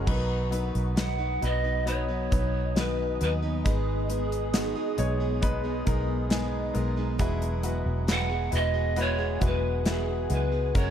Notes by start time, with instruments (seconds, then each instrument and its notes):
0.06 fingered electric bass B1, steel-string acoustic guitar B2 D#3 F#3 B3 D#4 B4, grand piano F#3 B3 D#4 B4, ambient pad B3 D#5 F#5 D#6, kick, crash
0.51 grand piano F#3 B3 D#4 B4, steel-string acoustic guitar F#3 B3 D#4 B4, closed hi-hat
0.75 fingered electric bass B1, closed hi-hat
0.96 steel-string acoustic guitar B2 D#3 F#3 B3 D#4 B4, grand piano F#3 B3 D#4 B4, snare, closed hi-hat
1.00 pan flute F#5
1.18 steel-string acoustic guitar F#3 B3 D#4 B4
1.41 fingered electric bass B1, grand piano F#3 B3 D#4 B4, pan flute D#5, closed hi-hat
1.64 steel-string acoustic guitar F#3 B3 D#4 B4
1.86 grand piano F#3 B3 D#4 B4, pan flute C#5, ambient pad G#5, closed hi-hat
2.08 steel-string acoustic guitar F#3 B3 D#4 B4
2.31 fingered electric bass B1, steel-string acoustic guitar F#3 B3 D#4 B4, grand piano F#3 B3 D#4 B4, kick, closed hi-hat
2.76 steel-string acoustic guitar B2 D#3 F#3 B3 D#4 B4, grand piano F#3 B3 D#4 B4, pan flute B4, snare, closed hi-hat
3.21 fingered electric bass D#2, steel-string acoustic guitar F#3 B3 D#4 B4, grand piano F#3 B3 D#4 B4, pan flute B4, closed hi-hat
3.42 steel-string acoustic guitar F#3 B3 D#4 B4
3.64 fingered electric bass G#1, steel-string acoustic guitar G#2 D#3 G#3 B3 D#4 G#4, grand piano G#3 B3 D#4 B4, pan flute G#4, ambient pad G#5, kick, closed hi-hat
4.09 grand piano G#3 B3 D#4 B4, steel-string acoustic guitar G#3 B3 D#4 G#4, closed hi-hat
4.32 closed hi-hat
4.53 steel-string acoustic guitar G#2 D#3 G#3 B3 D#4 G#4, grand piano G#3 B3 D#4 F#4, snare, closed hi-hat
4.76 steel-string acoustic guitar G#3 B3 D#4 G#4
4.97 fingered electric bass B1, grand piano G#3 B3 D#4 C#5, closed hi-hat
5.20 steel-string acoustic guitar G#3 B3 D#4 G#4
5.41 grand piano G#3 B3 D#4 B4, ambient pad A#5, kick, closed hi-hat
5.64 steel-string acoustic guitar G#3 B3 D#4 G#4
5.86 fingered electric bass B1, grand piano G#3 B3 D#4 A#4, steel-string acoustic guitar G#3 B3 D#4 G#4, kick, closed hi-hat
6.29 steel-string acoustic guitar G#2 D#3 G#3 B3 D#4 G#4, grand piano G#3 B3 D#4 G#4, snare, closed hi-hat
6.73 fingered electric bass B1, grand piano G#3 B3 D#4 A#4, steel-string acoustic guitar G#3 B3 D#4 G#4, closed hi-hat
6.96 steel-string acoustic guitar G#3 B3 D#4 G#4
7.18 fingered electric bass E1, grand piano B2 G#3 E4 F#4 B4, steel-string acoustic guitar E3 F#3 B3 F#4 G#4, ambient pad F#5 G#5, kick, closed hi-hat
7.42 closed hi-hat
7.63 steel-string acoustic guitar F#3 B3 F#4 G#4, grand piano G#3 E4 F#4 B4, closed hi-hat
7.86 fingered electric bass E1
8.07 steel-string acoustic guitar E3 F#3 B3 F#4 G#4, grand piano G#3 E4 F#4 B4, pan flute F#5, snare, closed hi-hat
8.29 steel-string acoustic guitar B3 F#4 G#4
8.51 fingered electric bass E1, grand piano G#3 E4 F#4 B4, pan flute D#5, closed hi-hat
8.74 steel-string acoustic guitar B3 F#4 G#4
8.96 grand piano G#3 E4 F#4 B4, pan flute C#5, closed hi-hat
9.18 steel-string acoustic guitar B3 F#4 G#4
9.39 fingered electric bass E1, steel-string acoustic guitar F#3 B3 F#4 G#4, grand piano G#3 E4 F#4 B4, kick, closed hi-hat
9.45 pan flute B4
9.85 steel-string acoustic guitar E3 F#3 B3 F#4 G#4, grand piano G#3 E4 F#4 B4, pan flute G#4, snare, closed hi-hat
10.30 fingered electric bass C#2, steel-string acoustic guitar F#3 B3 F#4 G#4, grand piano G#3 E4 F#4 G#4, pan flute B4, closed hi-hat
10.52 steel-string acoustic guitar B3 F#4 G#4
10.74 fingered electric bass F#1, grand piano C#3 G#3 C#4 F#4 A#4, steel-string acoustic guitar F#3 C#4 G#4 A#4, pan flute C#5, kick, closed hi-hat